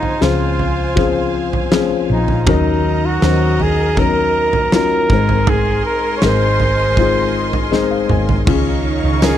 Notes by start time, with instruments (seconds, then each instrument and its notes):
Already playing: felt piano C#3 F3 C4 C#4 G#4, flugelhorn D#4, string section C5 F5 G#5
0.03 floor tom
0.21 fretless electric bass C#2, felt piano F3 C4 C#4 G#4, flugelhorn F4, snare
0.59 floor tom
0.96 felt piano F3 C4 C#4 G#4, kick, floor tom
1.53 floor tom
1.71 felt piano F3 C4 C#4 G#4, snare
2.10 fretless electric bass A#1, flugelhorn D#4
2.28 floor tom
2.47 fretless electric bass D#2, felt piano D#3 F#3 C#4 D#4 A#4, string section A#4 D#5 A#5, kick, floor tom
2.51 flugelhorn D#4
3.06 flugelhorn F#4
3.22 fretless electric bass D#2, felt piano F#3 C#4 D#4 C5, snare
3.60 flugelhorn G#4, floor tom
3.97 felt piano F#3 C#4 D#4 A#4, flugelhorn A#4, kick, floor tom
4.53 floor tom
4.72 felt piano F#3 C#4 D#4 F4, flugelhorn A#4, snare
5.09 fretless electric bass G#1, felt piano G#2 G#3 C4 D#4 A#4, string section D#5 G#5 C6, kick
5.29 floor tom
5.47 flugelhorn G#4, floor tom
5.86 flugelhorn A#4
6.17 flugelhorn C#5
6.22 fretless electric bass G#1, felt piano G#3 C4 D#4 A#4, flugelhorn C5, snare
6.60 floor tom
6.97 felt piano G#3 C4 D#4 F4, kick, floor tom
7.53 floor tom
7.71 felt piano G#3 C4 D#4 C5 D#5, snare
7.91 felt piano F5
8.09 fretless electric bass G#1, felt piano G#5, mid tom
8.29 floor tom
8.46 fretless electric bass C#2, felt piano C#3 C#4 F4 G#4, cello section D#3 D#4, string section G#4 C#5 F5 C#6, kick, floor tom, crash
9.03 fretless electric bass C#2
9.21 felt piano C#4 F4 A#4, flugelhorn G#4, snare, tambourine